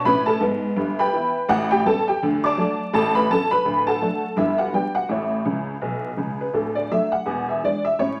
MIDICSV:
0, 0, Header, 1, 2, 480
1, 0, Start_track
1, 0, Key_signature, 2, "major"
1, 0, Tempo, 360794
1, 1036, Time_signature, 4, 2, 24, 8
1, 10909, End_track
2, 0, Start_track
2, 0, Title_t, "Honky-tonk piano"
2, 0, Program_c, 0, 3
2, 65, Note_on_c, 0, 45, 74
2, 72, Note_on_c, 0, 83, 100
2, 90, Note_on_c, 0, 71, 82
2, 91, Note_on_c, 0, 61, 87
2, 313, Note_off_c, 0, 83, 0
2, 345, Note_off_c, 0, 71, 0
2, 346, Note_on_c, 0, 81, 85
2, 362, Note_on_c, 0, 69, 77
2, 453, Note_off_c, 0, 45, 0
2, 469, Note_off_c, 0, 61, 0
2, 520, Note_off_c, 0, 81, 0
2, 535, Note_on_c, 0, 44, 80
2, 546, Note_off_c, 0, 69, 0
2, 557, Note_on_c, 0, 59, 77
2, 927, Note_off_c, 0, 44, 0
2, 940, Note_off_c, 0, 59, 0
2, 1015, Note_on_c, 0, 43, 76
2, 1025, Note_on_c, 0, 31, 59
2, 1317, Note_on_c, 0, 83, 83
2, 1323, Note_on_c, 0, 79, 84
2, 1331, Note_on_c, 0, 71, 69
2, 1431, Note_off_c, 0, 43, 0
2, 1437, Note_off_c, 0, 31, 0
2, 1507, Note_on_c, 0, 52, 58
2, 1511, Note_on_c, 0, 59, 50
2, 1517, Note_on_c, 0, 64, 56
2, 1773, Note_off_c, 0, 52, 0
2, 1776, Note_off_c, 0, 59, 0
2, 1780, Note_off_c, 0, 64, 0
2, 1893, Note_off_c, 0, 83, 0
2, 1950, Note_off_c, 0, 79, 0
2, 1954, Note_off_c, 0, 71, 0
2, 1975, Note_on_c, 0, 45, 83
2, 1977, Note_on_c, 0, 33, 84
2, 1986, Note_on_c, 0, 78, 107
2, 2003, Note_on_c, 0, 66, 77
2, 2227, Note_off_c, 0, 78, 0
2, 2259, Note_off_c, 0, 66, 0
2, 2274, Note_on_c, 0, 79, 101
2, 2290, Note_on_c, 0, 67, 88
2, 2390, Note_off_c, 0, 45, 0
2, 2391, Note_off_c, 0, 33, 0
2, 2443, Note_off_c, 0, 79, 0
2, 2461, Note_on_c, 0, 55, 48
2, 2467, Note_on_c, 0, 59, 50
2, 2468, Note_off_c, 0, 67, 0
2, 2479, Note_on_c, 0, 61, 50
2, 2479, Note_on_c, 0, 81, 89
2, 2489, Note_on_c, 0, 69, 86
2, 2714, Note_off_c, 0, 81, 0
2, 2728, Note_off_c, 0, 55, 0
2, 2732, Note_off_c, 0, 59, 0
2, 2741, Note_off_c, 0, 61, 0
2, 2742, Note_off_c, 0, 69, 0
2, 2766, Note_on_c, 0, 79, 83
2, 2782, Note_on_c, 0, 67, 74
2, 2929, Note_off_c, 0, 79, 0
2, 2953, Note_off_c, 0, 67, 0
2, 2960, Note_on_c, 0, 50, 86
2, 2965, Note_on_c, 0, 38, 71
2, 3243, Note_on_c, 0, 86, 98
2, 3257, Note_on_c, 0, 74, 69
2, 3268, Note_on_c, 0, 81, 75
2, 3364, Note_off_c, 0, 50, 0
2, 3366, Note_off_c, 0, 38, 0
2, 3421, Note_on_c, 0, 54, 57
2, 3439, Note_on_c, 0, 57, 49
2, 3439, Note_on_c, 0, 62, 52
2, 3687, Note_off_c, 0, 54, 0
2, 3700, Note_off_c, 0, 57, 0
2, 3700, Note_off_c, 0, 62, 0
2, 3815, Note_off_c, 0, 86, 0
2, 3876, Note_off_c, 0, 74, 0
2, 3882, Note_off_c, 0, 81, 0
2, 3902, Note_on_c, 0, 45, 75
2, 3903, Note_on_c, 0, 33, 83
2, 3915, Note_on_c, 0, 81, 105
2, 3926, Note_on_c, 0, 69, 72
2, 4151, Note_off_c, 0, 81, 0
2, 4179, Note_off_c, 0, 69, 0
2, 4191, Note_on_c, 0, 83, 107
2, 4200, Note_on_c, 0, 71, 80
2, 4313, Note_off_c, 0, 45, 0
2, 4314, Note_off_c, 0, 33, 0
2, 4360, Note_off_c, 0, 83, 0
2, 4380, Note_off_c, 0, 71, 0
2, 4385, Note_on_c, 0, 54, 48
2, 4400, Note_on_c, 0, 59, 47
2, 4401, Note_on_c, 0, 81, 101
2, 4405, Note_on_c, 0, 61, 56
2, 4419, Note_on_c, 0, 69, 76
2, 4634, Note_off_c, 0, 81, 0
2, 4650, Note_off_c, 0, 54, 0
2, 4661, Note_off_c, 0, 59, 0
2, 4664, Note_off_c, 0, 61, 0
2, 4666, Note_off_c, 0, 69, 0
2, 4669, Note_on_c, 0, 83, 99
2, 4690, Note_on_c, 0, 71, 77
2, 4858, Note_on_c, 0, 38, 71
2, 4865, Note_on_c, 0, 26, 53
2, 5077, Note_off_c, 0, 83, 0
2, 5127, Note_off_c, 0, 71, 0
2, 5146, Note_on_c, 0, 81, 88
2, 5161, Note_on_c, 0, 78, 50
2, 5163, Note_on_c, 0, 69, 68
2, 5271, Note_off_c, 0, 38, 0
2, 5275, Note_off_c, 0, 26, 0
2, 5339, Note_on_c, 0, 54, 39
2, 5353, Note_on_c, 0, 57, 48
2, 5355, Note_on_c, 0, 62, 44
2, 5606, Note_off_c, 0, 54, 0
2, 5616, Note_off_c, 0, 57, 0
2, 5617, Note_off_c, 0, 62, 0
2, 5725, Note_off_c, 0, 81, 0
2, 5787, Note_off_c, 0, 78, 0
2, 5788, Note_off_c, 0, 69, 0
2, 5803, Note_on_c, 0, 31, 58
2, 5810, Note_on_c, 0, 43, 71
2, 5823, Note_on_c, 0, 76, 83
2, 5830, Note_on_c, 0, 64, 67
2, 6064, Note_off_c, 0, 76, 0
2, 6090, Note_off_c, 0, 64, 0
2, 6094, Note_on_c, 0, 78, 63
2, 6111, Note_on_c, 0, 66, 57
2, 6222, Note_off_c, 0, 31, 0
2, 6226, Note_off_c, 0, 43, 0
2, 6270, Note_off_c, 0, 78, 0
2, 6296, Note_off_c, 0, 66, 0
2, 6297, Note_on_c, 0, 55, 44
2, 6303, Note_on_c, 0, 59, 33
2, 6305, Note_on_c, 0, 62, 42
2, 6307, Note_on_c, 0, 79, 69
2, 6322, Note_on_c, 0, 67, 47
2, 6546, Note_off_c, 0, 79, 0
2, 6565, Note_off_c, 0, 55, 0
2, 6569, Note_off_c, 0, 59, 0
2, 6570, Note_off_c, 0, 62, 0
2, 6577, Note_off_c, 0, 67, 0
2, 6581, Note_on_c, 0, 78, 75
2, 6599, Note_on_c, 0, 66, 55
2, 6754, Note_off_c, 0, 78, 0
2, 6768, Note_on_c, 0, 45, 61
2, 6770, Note_on_c, 0, 33, 52
2, 6776, Note_on_c, 0, 76, 57
2, 6780, Note_off_c, 0, 66, 0
2, 6792, Note_on_c, 0, 64, 42
2, 6796, Note_on_c, 0, 73, 47
2, 7185, Note_off_c, 0, 45, 0
2, 7186, Note_off_c, 0, 33, 0
2, 7253, Note_on_c, 0, 37, 56
2, 7257, Note_on_c, 0, 49, 53
2, 7620, Note_off_c, 0, 37, 0
2, 7622, Note_off_c, 0, 49, 0
2, 7736, Note_on_c, 0, 35, 62
2, 7743, Note_on_c, 0, 47, 51
2, 8007, Note_off_c, 0, 76, 0
2, 8102, Note_off_c, 0, 35, 0
2, 8106, Note_off_c, 0, 47, 0
2, 8179, Note_off_c, 0, 64, 0
2, 8181, Note_off_c, 0, 73, 0
2, 8209, Note_on_c, 0, 49, 57
2, 8216, Note_on_c, 0, 37, 50
2, 8525, Note_on_c, 0, 71, 54
2, 8578, Note_off_c, 0, 49, 0
2, 8582, Note_off_c, 0, 37, 0
2, 8689, Note_off_c, 0, 71, 0
2, 8691, Note_on_c, 0, 38, 55
2, 8694, Note_on_c, 0, 26, 53
2, 8705, Note_on_c, 0, 69, 56
2, 8947, Note_off_c, 0, 69, 0
2, 8983, Note_on_c, 0, 74, 66
2, 9109, Note_off_c, 0, 38, 0
2, 9111, Note_off_c, 0, 26, 0
2, 9157, Note_off_c, 0, 74, 0
2, 9198, Note_on_c, 0, 54, 47
2, 9198, Note_on_c, 0, 57, 47
2, 9201, Note_on_c, 0, 76, 87
2, 9202, Note_on_c, 0, 62, 42
2, 9437, Note_off_c, 0, 76, 0
2, 9461, Note_off_c, 0, 54, 0
2, 9462, Note_off_c, 0, 57, 0
2, 9464, Note_off_c, 0, 62, 0
2, 9470, Note_on_c, 0, 78, 65
2, 9656, Note_on_c, 0, 28, 66
2, 9661, Note_on_c, 0, 40, 66
2, 9881, Note_off_c, 0, 78, 0
2, 9963, Note_on_c, 0, 76, 64
2, 10074, Note_off_c, 0, 28, 0
2, 10076, Note_off_c, 0, 40, 0
2, 10130, Note_off_c, 0, 76, 0
2, 10157, Note_on_c, 0, 52, 39
2, 10164, Note_on_c, 0, 56, 42
2, 10171, Note_on_c, 0, 62, 45
2, 10173, Note_on_c, 0, 74, 72
2, 10405, Note_off_c, 0, 74, 0
2, 10422, Note_off_c, 0, 52, 0
2, 10427, Note_off_c, 0, 56, 0
2, 10432, Note_off_c, 0, 62, 0
2, 10439, Note_on_c, 0, 76, 84
2, 10609, Note_off_c, 0, 76, 0
2, 10624, Note_on_c, 0, 45, 56
2, 10634, Note_on_c, 0, 73, 80
2, 10646, Note_on_c, 0, 61, 52
2, 10875, Note_off_c, 0, 73, 0
2, 10909, Note_off_c, 0, 45, 0
2, 10909, Note_off_c, 0, 61, 0
2, 10909, End_track
0, 0, End_of_file